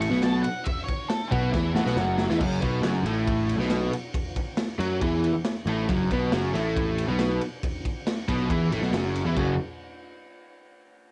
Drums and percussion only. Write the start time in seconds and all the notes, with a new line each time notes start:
0.01 ride
0.12 snare
0.22 snare, ride
0.44 ride
0.65 kick, ride
0.88 kick, ride
1.10 snare, ride
1.32 kick, ride
1.53 kick, snare
1.75 snare
1.87 snare
1.96 snare
2.18 snare
2.30 snare
2.40 kick, crash
2.62 kick, ride
2.83 snare, ride
3.06 ride
3.28 kick, ride
3.49 ride
3.60 snare
3.70 snare, ride
3.93 ride
4.14 kick, ride
4.36 kick, ride
4.57 snare, ride
4.80 snare, ride
5.01 kick, ride
5.24 ride
5.45 snare, ride
5.67 ride
5.89 kick, ride
6.11 kick, ride
6.32 snare, ride
6.54 snare, ride
6.76 kick, ride
6.98 ride
7.19 snare, ride
7.41 ride
7.63 kick, ride
7.85 kick, ride
8.07 snare, ride
8.28 kick, ride
8.50 kick, ride
8.72 ride
8.83 snare
8.93 snare, ride
9.16 ride
9.37 kick, crash